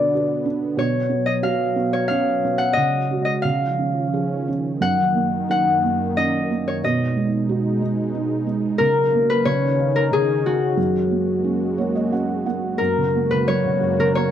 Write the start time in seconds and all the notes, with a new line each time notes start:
Already playing: B2 D3 B3 D4 F#4 B4 D5
0.15 F#4
0.46 D4
0.77 B2 F#3 C#5
1.09 B3
1.26 D#5
1.43 F#4 F5
1.76 B3
1.93 C#5
2.08 C#4 F5
2.44 B3
2.58 F#5
2.73 C#3 D#5
2.79 C#3 G#3 F#4
3.11 F#4
3.25 D#5
3.42 C#3 D#3 F3 C#4 F5
3.78 C#4
4.14 G#4
4.48 C#4
4.81 F#2 A#3 F#5
5.15 A#3
5.49 D#4 F#5
5.83 A#3
6.17 C#4 D#5
6.50 A#3
6.68 C#5
6.83 B2 G#3 D#4 D#5
7.17 G#3
7.49 F#4
7.82 G#3
8.15 D#4
8.47 G#3
8.78 C#3 A#4
8.83 C#3 F#3 A#3 C#4
9.14 A#3
9.30 B4
9.45 C#3 D#3 D#4 C#5
9.79 F5
9.96 A#4
10.12 C#3 G#4
10.45 D#4 F#4
10.77 F#2 G#3 A#3 F#4
11.11 A#3
11.44 C#4
11.78 A#3 C#5
11.95 D#5
12.12 C#4 F#5
12.46 A#3 F#5
12.78 F#2 G#3 A#3 F#4 A#4
12.98 C#3
13.15 A#3
13.31 C#3 B4
13.48 F#3 C#5
13.65 C#3
13.81 F#2
13.99 C#3 A#4
14.15 A#3 C#5